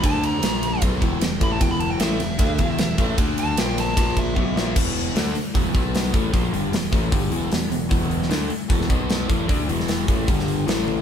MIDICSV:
0, 0, Header, 1, 7, 480
1, 0, Start_track
1, 0, Tempo, 394218
1, 43, Time_signature, 4, 2, 24, 8
1, 13413, End_track
2, 0, Start_track
2, 0, Title_t, "Lead electric guitar"
2, 0, Program_c, 0, 29
2, 77, Note_on_c, 0, 81, 104
2, 292, Note_off_c, 0, 81, 0
2, 317, Note_on_c, 0, 82, 91
2, 997, Note_off_c, 0, 82, 0
2, 1747, Note_on_c, 0, 83, 99
2, 1849, Note_off_c, 0, 83, 0
2, 1860, Note_on_c, 0, 81, 81
2, 1957, Note_on_c, 0, 79, 93
2, 1966, Note_off_c, 0, 81, 0
2, 2074, Note_off_c, 0, 79, 0
2, 2080, Note_on_c, 0, 83, 87
2, 2189, Note_off_c, 0, 83, 0
2, 2189, Note_on_c, 0, 81, 92
2, 2309, Note_off_c, 0, 81, 0
2, 2320, Note_on_c, 0, 79, 81
2, 2435, Note_off_c, 0, 79, 0
2, 2444, Note_on_c, 0, 76, 94
2, 3835, Note_off_c, 0, 76, 0
2, 4134, Note_on_c, 0, 81, 109
2, 4357, Note_off_c, 0, 81, 0
2, 4372, Note_on_c, 0, 79, 82
2, 4596, Note_off_c, 0, 79, 0
2, 4626, Note_on_c, 0, 81, 89
2, 5076, Note_off_c, 0, 81, 0
2, 5100, Note_on_c, 0, 76, 85
2, 5552, Note_off_c, 0, 76, 0
2, 5572, Note_on_c, 0, 76, 107
2, 5796, Note_off_c, 0, 76, 0
2, 13413, End_track
3, 0, Start_track
3, 0, Title_t, "Overdriven electric guitar"
3, 0, Program_c, 1, 29
3, 35, Note_on_c, 1, 50, 80
3, 43, Note_on_c, 1, 57, 95
3, 48, Note_on_c, 1, 62, 114
3, 510, Note_off_c, 1, 50, 0
3, 515, Note_off_c, 1, 57, 0
3, 517, Note_off_c, 1, 62, 0
3, 517, Note_on_c, 1, 46, 88
3, 527, Note_on_c, 1, 53, 104
3, 533, Note_on_c, 1, 58, 101
3, 991, Note_off_c, 1, 46, 0
3, 996, Note_off_c, 1, 53, 0
3, 999, Note_off_c, 1, 58, 0
3, 1010, Note_on_c, 1, 47, 86
3, 1016, Note_on_c, 1, 54, 104
3, 1023, Note_on_c, 1, 59, 96
3, 1237, Note_off_c, 1, 47, 0
3, 1240, Note_off_c, 1, 54, 0
3, 1241, Note_on_c, 1, 40, 84
3, 1244, Note_off_c, 1, 59, 0
3, 1250, Note_on_c, 1, 47, 91
3, 1258, Note_on_c, 1, 52, 83
3, 1473, Note_off_c, 1, 40, 0
3, 1477, Note_off_c, 1, 47, 0
3, 1481, Note_off_c, 1, 52, 0
3, 1491, Note_on_c, 1, 40, 70
3, 1495, Note_on_c, 1, 47, 80
3, 1677, Note_off_c, 1, 40, 0
3, 1679, Note_off_c, 1, 47, 0
3, 1719, Note_on_c, 1, 45, 83
3, 1732, Note_on_c, 1, 52, 89
3, 1733, Note_on_c, 1, 57, 102
3, 1952, Note_off_c, 1, 45, 0
3, 1958, Note_off_c, 1, 52, 0
3, 1958, Note_off_c, 1, 57, 0
3, 1964, Note_on_c, 1, 40, 100
3, 1973, Note_on_c, 1, 47, 99
3, 1977, Note_on_c, 1, 52, 102
3, 2431, Note_off_c, 1, 52, 0
3, 2433, Note_off_c, 1, 40, 0
3, 2436, Note_off_c, 1, 47, 0
3, 2441, Note_on_c, 1, 45, 101
3, 2445, Note_on_c, 1, 52, 100
3, 2452, Note_on_c, 1, 57, 98
3, 2671, Note_off_c, 1, 45, 0
3, 2674, Note_off_c, 1, 52, 0
3, 2677, Note_off_c, 1, 57, 0
3, 2691, Note_on_c, 1, 40, 64
3, 2692, Note_on_c, 1, 47, 67
3, 2876, Note_off_c, 1, 40, 0
3, 2876, Note_off_c, 1, 47, 0
3, 2924, Note_on_c, 1, 50, 93
3, 2933, Note_on_c, 1, 57, 100
3, 2936, Note_on_c, 1, 62, 96
3, 3153, Note_off_c, 1, 50, 0
3, 3157, Note_off_c, 1, 57, 0
3, 3159, Note_off_c, 1, 62, 0
3, 3165, Note_on_c, 1, 40, 74
3, 3170, Note_on_c, 1, 47, 90
3, 3181, Note_on_c, 1, 52, 92
3, 3384, Note_off_c, 1, 40, 0
3, 3391, Note_off_c, 1, 47, 0
3, 3399, Note_on_c, 1, 40, 67
3, 3401, Note_off_c, 1, 52, 0
3, 3406, Note_on_c, 1, 47, 77
3, 3589, Note_off_c, 1, 40, 0
3, 3593, Note_off_c, 1, 47, 0
3, 3631, Note_on_c, 1, 45, 89
3, 3640, Note_on_c, 1, 52, 98
3, 3649, Note_on_c, 1, 57, 97
3, 3862, Note_off_c, 1, 45, 0
3, 3862, Note_off_c, 1, 57, 0
3, 3867, Note_on_c, 1, 50, 85
3, 3870, Note_off_c, 1, 52, 0
3, 3877, Note_on_c, 1, 57, 96
3, 3880, Note_on_c, 1, 62, 112
3, 4343, Note_off_c, 1, 50, 0
3, 4348, Note_off_c, 1, 57, 0
3, 4350, Note_off_c, 1, 62, 0
3, 4355, Note_on_c, 1, 46, 96
3, 4363, Note_on_c, 1, 53, 96
3, 4369, Note_on_c, 1, 58, 109
3, 4819, Note_off_c, 1, 46, 0
3, 4826, Note_off_c, 1, 53, 0
3, 4834, Note_off_c, 1, 58, 0
3, 4834, Note_on_c, 1, 46, 90
3, 4841, Note_on_c, 1, 53, 100
3, 4847, Note_on_c, 1, 58, 99
3, 5306, Note_off_c, 1, 46, 0
3, 5310, Note_off_c, 1, 53, 0
3, 5313, Note_off_c, 1, 58, 0
3, 5313, Note_on_c, 1, 47, 82
3, 5321, Note_on_c, 1, 54, 103
3, 5329, Note_on_c, 1, 59, 108
3, 5546, Note_off_c, 1, 47, 0
3, 5550, Note_off_c, 1, 54, 0
3, 5554, Note_off_c, 1, 59, 0
3, 5559, Note_on_c, 1, 46, 92
3, 5569, Note_on_c, 1, 53, 92
3, 5571, Note_on_c, 1, 58, 96
3, 5789, Note_off_c, 1, 46, 0
3, 5793, Note_off_c, 1, 53, 0
3, 5794, Note_on_c, 1, 40, 88
3, 5795, Note_off_c, 1, 58, 0
3, 5801, Note_on_c, 1, 47, 85
3, 5812, Note_on_c, 1, 52, 106
3, 6266, Note_off_c, 1, 40, 0
3, 6270, Note_off_c, 1, 47, 0
3, 6275, Note_off_c, 1, 52, 0
3, 6278, Note_on_c, 1, 50, 89
3, 6282, Note_on_c, 1, 57, 101
3, 6288, Note_on_c, 1, 62, 96
3, 6508, Note_off_c, 1, 50, 0
3, 6510, Note_off_c, 1, 57, 0
3, 6513, Note_off_c, 1, 62, 0
3, 6747, Note_on_c, 1, 40, 84
3, 6759, Note_on_c, 1, 47, 91
3, 6762, Note_on_c, 1, 52, 107
3, 6981, Note_off_c, 1, 47, 0
3, 6982, Note_off_c, 1, 40, 0
3, 6990, Note_off_c, 1, 52, 0
3, 6995, Note_on_c, 1, 47, 79
3, 7001, Note_on_c, 1, 54, 89
3, 7009, Note_on_c, 1, 59, 88
3, 7467, Note_off_c, 1, 47, 0
3, 7469, Note_off_c, 1, 54, 0
3, 7472, Note_on_c, 1, 45, 81
3, 7473, Note_off_c, 1, 59, 0
3, 7480, Note_on_c, 1, 52, 103
3, 7488, Note_on_c, 1, 57, 100
3, 7701, Note_off_c, 1, 45, 0
3, 7706, Note_on_c, 1, 46, 86
3, 7709, Note_off_c, 1, 52, 0
3, 7713, Note_off_c, 1, 57, 0
3, 7714, Note_on_c, 1, 53, 106
3, 7719, Note_on_c, 1, 58, 101
3, 7942, Note_off_c, 1, 46, 0
3, 7946, Note_off_c, 1, 53, 0
3, 7948, Note_off_c, 1, 58, 0
3, 7949, Note_on_c, 1, 43, 90
3, 7961, Note_on_c, 1, 50, 89
3, 7966, Note_on_c, 1, 55, 90
3, 8184, Note_off_c, 1, 43, 0
3, 8190, Note_off_c, 1, 50, 0
3, 8190, Note_on_c, 1, 40, 61
3, 8192, Note_off_c, 1, 55, 0
3, 8196, Note_on_c, 1, 47, 82
3, 8383, Note_off_c, 1, 40, 0
3, 8386, Note_off_c, 1, 47, 0
3, 8426, Note_on_c, 1, 45, 88
3, 8434, Note_on_c, 1, 52, 85
3, 8441, Note_on_c, 1, 57, 101
3, 8662, Note_off_c, 1, 45, 0
3, 8666, Note_off_c, 1, 52, 0
3, 8666, Note_on_c, 1, 43, 102
3, 8670, Note_off_c, 1, 57, 0
3, 8670, Note_on_c, 1, 50, 102
3, 8683, Note_on_c, 1, 55, 99
3, 8896, Note_off_c, 1, 43, 0
3, 8901, Note_on_c, 1, 40, 85
3, 8904, Note_off_c, 1, 50, 0
3, 8909, Note_on_c, 1, 47, 89
3, 8910, Note_off_c, 1, 55, 0
3, 8915, Note_on_c, 1, 52, 96
3, 9129, Note_off_c, 1, 40, 0
3, 9134, Note_off_c, 1, 47, 0
3, 9144, Note_on_c, 1, 40, 67
3, 9147, Note_off_c, 1, 52, 0
3, 9149, Note_on_c, 1, 47, 67
3, 9341, Note_off_c, 1, 40, 0
3, 9343, Note_off_c, 1, 47, 0
3, 9391, Note_on_c, 1, 40, 68
3, 9397, Note_on_c, 1, 47, 69
3, 9584, Note_off_c, 1, 40, 0
3, 9587, Note_off_c, 1, 47, 0
3, 9627, Note_on_c, 1, 40, 91
3, 9639, Note_on_c, 1, 47, 106
3, 9643, Note_on_c, 1, 52, 99
3, 10103, Note_off_c, 1, 40, 0
3, 10109, Note_off_c, 1, 47, 0
3, 10112, Note_off_c, 1, 52, 0
3, 10115, Note_on_c, 1, 50, 91
3, 10127, Note_on_c, 1, 57, 89
3, 10131, Note_on_c, 1, 62, 112
3, 10347, Note_off_c, 1, 50, 0
3, 10353, Note_off_c, 1, 57, 0
3, 10355, Note_off_c, 1, 62, 0
3, 10597, Note_on_c, 1, 40, 95
3, 10607, Note_on_c, 1, 47, 95
3, 10613, Note_on_c, 1, 52, 110
3, 10822, Note_off_c, 1, 47, 0
3, 10829, Note_off_c, 1, 40, 0
3, 10837, Note_off_c, 1, 52, 0
3, 10837, Note_on_c, 1, 47, 85
3, 10844, Note_on_c, 1, 54, 85
3, 10851, Note_on_c, 1, 59, 84
3, 11309, Note_off_c, 1, 47, 0
3, 11313, Note_off_c, 1, 54, 0
3, 11316, Note_off_c, 1, 59, 0
3, 11317, Note_on_c, 1, 45, 88
3, 11323, Note_on_c, 1, 52, 98
3, 11327, Note_on_c, 1, 57, 106
3, 11549, Note_off_c, 1, 45, 0
3, 11552, Note_off_c, 1, 52, 0
3, 11554, Note_off_c, 1, 57, 0
3, 11557, Note_on_c, 1, 50, 83
3, 11567, Note_on_c, 1, 57, 92
3, 11570, Note_on_c, 1, 62, 92
3, 11790, Note_off_c, 1, 50, 0
3, 11795, Note_off_c, 1, 57, 0
3, 11796, Note_off_c, 1, 62, 0
3, 11804, Note_on_c, 1, 40, 87
3, 11815, Note_on_c, 1, 47, 85
3, 11820, Note_on_c, 1, 52, 99
3, 12274, Note_off_c, 1, 40, 0
3, 12276, Note_off_c, 1, 52, 0
3, 12280, Note_off_c, 1, 47, 0
3, 12285, Note_on_c, 1, 45, 77
3, 12290, Note_on_c, 1, 52, 93
3, 12295, Note_on_c, 1, 57, 85
3, 12514, Note_off_c, 1, 45, 0
3, 12517, Note_off_c, 1, 52, 0
3, 12520, Note_off_c, 1, 57, 0
3, 12529, Note_on_c, 1, 43, 91
3, 12532, Note_on_c, 1, 50, 93
3, 12539, Note_on_c, 1, 55, 101
3, 12998, Note_off_c, 1, 43, 0
3, 12999, Note_off_c, 1, 50, 0
3, 13003, Note_off_c, 1, 55, 0
3, 13004, Note_on_c, 1, 45, 81
3, 13013, Note_on_c, 1, 52, 84
3, 13018, Note_on_c, 1, 57, 89
3, 13413, Note_off_c, 1, 45, 0
3, 13413, Note_off_c, 1, 52, 0
3, 13413, Note_off_c, 1, 57, 0
3, 13413, End_track
4, 0, Start_track
4, 0, Title_t, "Picked electric bass"
4, 0, Program_c, 2, 34
4, 48, Note_on_c, 2, 38, 97
4, 491, Note_off_c, 2, 38, 0
4, 528, Note_on_c, 2, 34, 92
4, 970, Note_off_c, 2, 34, 0
4, 1002, Note_on_c, 2, 35, 93
4, 1224, Note_off_c, 2, 35, 0
4, 1241, Note_on_c, 2, 28, 96
4, 1463, Note_off_c, 2, 28, 0
4, 1475, Note_on_c, 2, 28, 78
4, 1700, Note_off_c, 2, 28, 0
4, 1720, Note_on_c, 2, 33, 94
4, 1942, Note_off_c, 2, 33, 0
4, 1961, Note_on_c, 2, 28, 101
4, 2405, Note_off_c, 2, 28, 0
4, 2437, Note_on_c, 2, 33, 87
4, 2660, Note_off_c, 2, 33, 0
4, 2676, Note_on_c, 2, 28, 76
4, 2899, Note_off_c, 2, 28, 0
4, 2917, Note_on_c, 2, 38, 96
4, 3139, Note_off_c, 2, 38, 0
4, 3156, Note_on_c, 2, 28, 96
4, 3379, Note_off_c, 2, 28, 0
4, 3397, Note_on_c, 2, 28, 80
4, 3619, Note_off_c, 2, 28, 0
4, 3636, Note_on_c, 2, 33, 90
4, 3859, Note_off_c, 2, 33, 0
4, 3871, Note_on_c, 2, 38, 94
4, 4318, Note_off_c, 2, 38, 0
4, 4357, Note_on_c, 2, 34, 94
4, 4802, Note_off_c, 2, 34, 0
4, 4834, Note_on_c, 2, 34, 99
4, 5280, Note_off_c, 2, 34, 0
4, 5316, Note_on_c, 2, 35, 97
4, 5538, Note_off_c, 2, 35, 0
4, 5554, Note_on_c, 2, 34, 96
4, 5777, Note_off_c, 2, 34, 0
4, 5798, Note_on_c, 2, 28, 91
4, 6242, Note_off_c, 2, 28, 0
4, 6274, Note_on_c, 2, 38, 81
4, 6496, Note_off_c, 2, 38, 0
4, 6761, Note_on_c, 2, 28, 90
4, 6980, Note_off_c, 2, 28, 0
4, 6998, Note_on_c, 2, 35, 103
4, 7441, Note_off_c, 2, 35, 0
4, 7475, Note_on_c, 2, 33, 91
4, 7697, Note_off_c, 2, 33, 0
4, 7714, Note_on_c, 2, 34, 91
4, 7936, Note_off_c, 2, 34, 0
4, 7952, Note_on_c, 2, 31, 88
4, 8175, Note_off_c, 2, 31, 0
4, 8188, Note_on_c, 2, 28, 77
4, 8413, Note_off_c, 2, 28, 0
4, 8433, Note_on_c, 2, 33, 86
4, 8656, Note_off_c, 2, 33, 0
4, 8672, Note_on_c, 2, 31, 97
4, 8886, Note_off_c, 2, 31, 0
4, 8893, Note_on_c, 2, 28, 93
4, 9126, Note_off_c, 2, 28, 0
4, 9141, Note_on_c, 2, 28, 81
4, 9370, Note_off_c, 2, 28, 0
4, 9375, Note_on_c, 2, 28, 78
4, 9607, Note_off_c, 2, 28, 0
4, 9634, Note_on_c, 2, 28, 102
4, 10081, Note_off_c, 2, 28, 0
4, 10103, Note_on_c, 2, 38, 92
4, 10331, Note_off_c, 2, 38, 0
4, 10590, Note_on_c, 2, 28, 103
4, 10816, Note_off_c, 2, 28, 0
4, 10834, Note_on_c, 2, 35, 97
4, 11281, Note_off_c, 2, 35, 0
4, 11321, Note_on_c, 2, 33, 92
4, 11542, Note_off_c, 2, 33, 0
4, 11561, Note_on_c, 2, 38, 91
4, 11782, Note_off_c, 2, 38, 0
4, 11792, Note_on_c, 2, 28, 92
4, 12242, Note_off_c, 2, 28, 0
4, 12278, Note_on_c, 2, 33, 90
4, 12501, Note_off_c, 2, 33, 0
4, 12522, Note_on_c, 2, 31, 91
4, 12968, Note_off_c, 2, 31, 0
4, 13000, Note_on_c, 2, 33, 88
4, 13413, Note_off_c, 2, 33, 0
4, 13413, End_track
5, 0, Start_track
5, 0, Title_t, "Muted overdriven electric guitar strokes"
5, 6522, Note_on_c, 9, 29, 59
5, 6644, Note_off_c, 9, 29, 0
5, 10365, Note_on_c, 9, 29, 59
5, 10487, Note_off_c, 9, 29, 0
5, 13413, End_track
6, 0, Start_track
6, 0, Title_t, "Muted picked electric bass strokes"
6, 6517, Note_on_c, 9, 29, 36
6, 6639, Note_off_c, 9, 29, 0
6, 10352, Note_on_c, 9, 29, 42
6, 10474, Note_off_c, 9, 29, 0
6, 13413, End_track
7, 0, Start_track
7, 0, Title_t, "Drums"
7, 43, Note_on_c, 9, 51, 103
7, 44, Note_on_c, 9, 36, 117
7, 164, Note_off_c, 9, 51, 0
7, 165, Note_off_c, 9, 36, 0
7, 284, Note_on_c, 9, 51, 70
7, 406, Note_off_c, 9, 51, 0
7, 519, Note_on_c, 9, 51, 99
7, 531, Note_on_c, 9, 38, 112
7, 641, Note_off_c, 9, 51, 0
7, 653, Note_off_c, 9, 38, 0
7, 763, Note_on_c, 9, 51, 76
7, 885, Note_off_c, 9, 51, 0
7, 993, Note_on_c, 9, 51, 100
7, 1000, Note_on_c, 9, 36, 116
7, 1115, Note_off_c, 9, 51, 0
7, 1122, Note_off_c, 9, 36, 0
7, 1237, Note_on_c, 9, 51, 63
7, 1241, Note_on_c, 9, 36, 76
7, 1359, Note_off_c, 9, 51, 0
7, 1362, Note_off_c, 9, 36, 0
7, 1477, Note_on_c, 9, 51, 93
7, 1490, Note_on_c, 9, 38, 101
7, 1599, Note_off_c, 9, 51, 0
7, 1611, Note_off_c, 9, 38, 0
7, 1718, Note_on_c, 9, 51, 71
7, 1720, Note_on_c, 9, 36, 89
7, 1839, Note_off_c, 9, 51, 0
7, 1841, Note_off_c, 9, 36, 0
7, 1956, Note_on_c, 9, 51, 100
7, 1959, Note_on_c, 9, 36, 116
7, 2078, Note_off_c, 9, 51, 0
7, 2081, Note_off_c, 9, 36, 0
7, 2195, Note_on_c, 9, 51, 63
7, 2317, Note_off_c, 9, 51, 0
7, 2431, Note_on_c, 9, 51, 94
7, 2443, Note_on_c, 9, 38, 113
7, 2553, Note_off_c, 9, 51, 0
7, 2565, Note_off_c, 9, 38, 0
7, 2676, Note_on_c, 9, 51, 71
7, 2688, Note_on_c, 9, 38, 33
7, 2798, Note_off_c, 9, 51, 0
7, 2810, Note_off_c, 9, 38, 0
7, 2907, Note_on_c, 9, 51, 93
7, 2914, Note_on_c, 9, 36, 117
7, 3028, Note_off_c, 9, 51, 0
7, 3036, Note_off_c, 9, 36, 0
7, 3146, Note_on_c, 9, 51, 67
7, 3154, Note_on_c, 9, 36, 77
7, 3268, Note_off_c, 9, 51, 0
7, 3276, Note_off_c, 9, 36, 0
7, 3389, Note_on_c, 9, 51, 88
7, 3401, Note_on_c, 9, 38, 104
7, 3511, Note_off_c, 9, 51, 0
7, 3523, Note_off_c, 9, 38, 0
7, 3629, Note_on_c, 9, 51, 76
7, 3633, Note_on_c, 9, 36, 89
7, 3751, Note_off_c, 9, 51, 0
7, 3754, Note_off_c, 9, 36, 0
7, 3872, Note_on_c, 9, 36, 114
7, 3872, Note_on_c, 9, 51, 98
7, 3994, Note_off_c, 9, 36, 0
7, 3994, Note_off_c, 9, 51, 0
7, 4112, Note_on_c, 9, 51, 75
7, 4234, Note_off_c, 9, 51, 0
7, 4350, Note_on_c, 9, 51, 103
7, 4362, Note_on_c, 9, 38, 123
7, 4472, Note_off_c, 9, 51, 0
7, 4484, Note_off_c, 9, 38, 0
7, 4601, Note_on_c, 9, 51, 83
7, 4613, Note_on_c, 9, 38, 35
7, 4723, Note_off_c, 9, 51, 0
7, 4735, Note_off_c, 9, 38, 0
7, 4834, Note_on_c, 9, 36, 107
7, 4838, Note_on_c, 9, 51, 109
7, 4956, Note_off_c, 9, 36, 0
7, 4960, Note_off_c, 9, 51, 0
7, 5073, Note_on_c, 9, 51, 63
7, 5074, Note_on_c, 9, 36, 73
7, 5194, Note_off_c, 9, 51, 0
7, 5196, Note_off_c, 9, 36, 0
7, 5314, Note_on_c, 9, 36, 59
7, 5436, Note_off_c, 9, 36, 0
7, 5569, Note_on_c, 9, 38, 89
7, 5690, Note_off_c, 9, 38, 0
7, 5795, Note_on_c, 9, 49, 123
7, 5797, Note_on_c, 9, 36, 116
7, 5917, Note_off_c, 9, 49, 0
7, 5919, Note_off_c, 9, 36, 0
7, 6039, Note_on_c, 9, 46, 50
7, 6160, Note_off_c, 9, 46, 0
7, 6280, Note_on_c, 9, 46, 78
7, 6292, Note_on_c, 9, 38, 112
7, 6402, Note_off_c, 9, 46, 0
7, 6414, Note_off_c, 9, 38, 0
7, 6515, Note_on_c, 9, 46, 59
7, 6637, Note_off_c, 9, 46, 0
7, 6758, Note_on_c, 9, 36, 104
7, 6759, Note_on_c, 9, 46, 80
7, 6879, Note_off_c, 9, 36, 0
7, 6881, Note_off_c, 9, 46, 0
7, 6997, Note_on_c, 9, 36, 93
7, 6997, Note_on_c, 9, 46, 53
7, 7118, Note_off_c, 9, 36, 0
7, 7118, Note_off_c, 9, 46, 0
7, 7239, Note_on_c, 9, 46, 85
7, 7252, Note_on_c, 9, 38, 107
7, 7361, Note_off_c, 9, 46, 0
7, 7373, Note_off_c, 9, 38, 0
7, 7474, Note_on_c, 9, 36, 101
7, 7475, Note_on_c, 9, 46, 62
7, 7596, Note_off_c, 9, 36, 0
7, 7597, Note_off_c, 9, 46, 0
7, 7715, Note_on_c, 9, 36, 109
7, 7718, Note_on_c, 9, 46, 78
7, 7836, Note_off_c, 9, 36, 0
7, 7840, Note_off_c, 9, 46, 0
7, 7959, Note_on_c, 9, 46, 57
7, 8081, Note_off_c, 9, 46, 0
7, 8197, Note_on_c, 9, 46, 84
7, 8209, Note_on_c, 9, 38, 113
7, 8319, Note_off_c, 9, 46, 0
7, 8331, Note_off_c, 9, 38, 0
7, 8433, Note_on_c, 9, 36, 110
7, 8436, Note_on_c, 9, 46, 59
7, 8555, Note_off_c, 9, 36, 0
7, 8558, Note_off_c, 9, 46, 0
7, 8672, Note_on_c, 9, 36, 110
7, 8673, Note_on_c, 9, 46, 90
7, 8794, Note_off_c, 9, 36, 0
7, 8795, Note_off_c, 9, 46, 0
7, 8911, Note_on_c, 9, 46, 58
7, 9032, Note_off_c, 9, 46, 0
7, 9151, Note_on_c, 9, 46, 83
7, 9164, Note_on_c, 9, 38, 112
7, 9273, Note_off_c, 9, 46, 0
7, 9285, Note_off_c, 9, 38, 0
7, 9397, Note_on_c, 9, 46, 61
7, 9519, Note_off_c, 9, 46, 0
7, 9632, Note_on_c, 9, 36, 102
7, 9635, Note_on_c, 9, 46, 77
7, 9754, Note_off_c, 9, 36, 0
7, 9757, Note_off_c, 9, 46, 0
7, 9875, Note_on_c, 9, 46, 58
7, 9996, Note_off_c, 9, 46, 0
7, 10013, Note_on_c, 9, 38, 35
7, 10115, Note_on_c, 9, 46, 79
7, 10127, Note_off_c, 9, 38, 0
7, 10127, Note_on_c, 9, 38, 113
7, 10236, Note_off_c, 9, 46, 0
7, 10249, Note_off_c, 9, 38, 0
7, 10351, Note_on_c, 9, 46, 58
7, 10473, Note_off_c, 9, 46, 0
7, 10592, Note_on_c, 9, 36, 116
7, 10593, Note_on_c, 9, 46, 81
7, 10714, Note_off_c, 9, 36, 0
7, 10715, Note_off_c, 9, 46, 0
7, 10727, Note_on_c, 9, 38, 31
7, 10836, Note_on_c, 9, 36, 95
7, 10840, Note_on_c, 9, 46, 52
7, 10849, Note_off_c, 9, 38, 0
7, 10957, Note_off_c, 9, 36, 0
7, 10962, Note_off_c, 9, 46, 0
7, 11074, Note_on_c, 9, 46, 78
7, 11086, Note_on_c, 9, 38, 110
7, 11196, Note_off_c, 9, 46, 0
7, 11208, Note_off_c, 9, 38, 0
7, 11318, Note_on_c, 9, 36, 106
7, 11322, Note_on_c, 9, 46, 61
7, 11440, Note_off_c, 9, 36, 0
7, 11444, Note_off_c, 9, 46, 0
7, 11558, Note_on_c, 9, 36, 105
7, 11558, Note_on_c, 9, 46, 85
7, 11679, Note_off_c, 9, 36, 0
7, 11680, Note_off_c, 9, 46, 0
7, 11802, Note_on_c, 9, 46, 64
7, 11924, Note_off_c, 9, 46, 0
7, 11932, Note_on_c, 9, 38, 34
7, 12033, Note_on_c, 9, 46, 79
7, 12045, Note_off_c, 9, 38, 0
7, 12045, Note_on_c, 9, 38, 109
7, 12155, Note_off_c, 9, 46, 0
7, 12167, Note_off_c, 9, 38, 0
7, 12276, Note_on_c, 9, 46, 67
7, 12278, Note_on_c, 9, 36, 114
7, 12398, Note_off_c, 9, 46, 0
7, 12399, Note_off_c, 9, 36, 0
7, 12518, Note_on_c, 9, 46, 79
7, 12519, Note_on_c, 9, 36, 103
7, 12640, Note_off_c, 9, 46, 0
7, 12641, Note_off_c, 9, 36, 0
7, 12654, Note_on_c, 9, 38, 31
7, 12762, Note_on_c, 9, 46, 59
7, 12776, Note_off_c, 9, 38, 0
7, 12884, Note_off_c, 9, 46, 0
7, 13005, Note_on_c, 9, 46, 74
7, 13017, Note_on_c, 9, 38, 115
7, 13127, Note_off_c, 9, 46, 0
7, 13139, Note_off_c, 9, 38, 0
7, 13246, Note_on_c, 9, 48, 63
7, 13368, Note_off_c, 9, 48, 0
7, 13413, End_track
0, 0, End_of_file